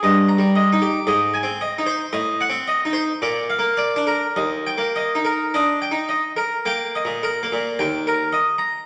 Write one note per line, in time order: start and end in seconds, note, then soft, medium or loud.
0.03 0.37 G2 medium
0.03 0.31 D#5 medium
0.29 0.56 A#5 medium
0.38 0.75 G3 soft
0.56 0.83 D#5 medium
0.73 0.98 D#4 medium
0.82 1.08 G4 medium
1.07 1.41 G#2 medium
1.07 1.35 D#5 medium
1.34 1.61 G#5 medium
1.43 1.79 C4 soft
1.61 1.88 D#5 medium
1.78 2.03 D#4 soft
1.86 2.12 C5 soft
2.13 2.47 A2 medium
2.13 2.40 D#5 soft
2.41 2.68 F#5 medium
2.50 2.86 C4 soft
2.68 2.95 D#5 medium
2.85 3.11 D#4 soft
2.93 3.20 C5 soft
3.22 3.57 A#2 medium
3.22 3.50 D5 medium
3.50 3.79 F5 medium
3.59 3.98 A#3 soft
3.77 4.07 D5 medium
3.96 4.24 D4 soft
4.07 4.35 A#4 soft
4.36 4.74 D#2 medium
4.36 4.67 D#5 soft
4.67 4.96 G5 medium
4.78 5.17 A#3 soft
4.96 5.26 D#5 soft
5.15 5.55 D#4 soft
5.25 5.54 A#4 soft
5.54 5.91 D4 soft
5.54 5.83 D#5 soft
5.82 6.11 G5 soft
5.91 6.31 D#4 soft
6.09 6.39 D#5 soft
6.37 6.67 A#4 soft
6.65 7.06 A#3 soft
6.65 6.96 G5 soft
6.95 7.25 D#5 soft
7.05 7.45 A#2 soft
7.23 7.53 A#4 medium
7.43 7.79 A#3 soft
7.52 7.79 A#2 soft
7.79 8.31 D#2 medium
7.79 8.07 G5 soft
8.07 8.34 A#4 soft
8.33 8.60 D#5 soft
8.58 8.86 A#5 medium